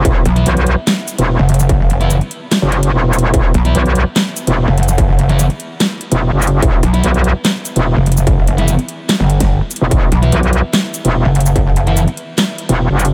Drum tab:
HH |x---x-x-x-x-x---x---x-x-----xx--|x---x-x-x-x-x---x---x-x-----xx--|x---x-x-x-x-x---x---x-x-----xx--|x---x-x-x-x-x---x---x-x-----xx--|
SH |--------------------x---------x-|--------x-------------------x---|--------------------x---------x-|--------x-------------------x---|
CP |----------------x---------------|----------------x---------------|----------------x---------------|----------------x---------------|
SD |----------------o---------------|----------------o---------------|----------------o---------------|----------------o---------------|
BD |o-------------------------------|o-------------------------------|o-------------------------------|o-------------------------------|

HH |x---x-x-x-x-x---x---x-x-----xx--|x---x-x-x-x-x---x---x-x-----xx--|x---x-x-x-x-x---x---x-x-----xx--|x---x-x-x-x-x---x---x-x-----xx--|
SH |--------------------x---------x-|--------x-------------------x---|--------------------x---------x-|--------x-------------------x---|
CP |----------------x---------------|----------------x---------------|----------------x---------------|----------------x---------------|
SD |----------------o---------------|----------------o-----o---------|----------------o---------------|----------------o---------------|
BD |o-------------------------------|o---------------------o---------|o-------------------------------|o-------------------------------|